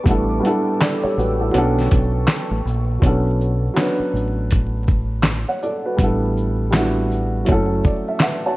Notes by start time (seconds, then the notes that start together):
Already playing: D6
0.04 A1 G3 B3 D4 A4 G5 E6, kick, closed hi-hat
0.09 E4 A4
0.40 G3 B3 D4
0.45 E4 A4, closed hi-hat, shaker
0.80 A4 D5, snare, clap, closed hi-hat
1.04 G4 C#5, muted fingered electric bass stroke
1.18 A1 F#4 B4, shaker
1.41 E4 A4
1.51 B1 F#3 B3 C#4 B4 A5 C#6, closed hi-hat
1.56 D4 A4
1.79 snare
1.91 B1, kick, closed hi-hat, shaker
2.28 snare, clap, closed hi-hat
2.51 A1
2.65 A#1, shaker
3.00 B1 F#3 B3 C#4, kick, closed hi-hat
3.05 D4 A4
3.41 shaker
3.74 F#3 B3 C#4, snare, clap, closed hi-hat
3.79 D4 B4
4.00 muted fingered electric bass stroke
4.13 A1, shaker
4.51 kick, closed hi-hat
4.87 kick, shaker
5.23 snare, clap, closed hi-hat
5.48 C#5 F#5
5.63 A4 D5, shaker
5.86 F#4 B4
5.97 A1 G3 B3 D4, kick, closed hi-hat
6.02 E4 A4
6.37 shaker
6.71 G3 B3 D4, snare, clap, closed hi-hat
6.76 E4 F#4
7.12 shaker
7.45 F#1 F#3 A3 C#4, kick, closed hi-hat
7.50 E4 A4
7.84 D5, kick, shaker
8.08 E5
8.20 B4 E5 F#5, snare, clap, closed hi-hat
8.46 F#4 C#5 A5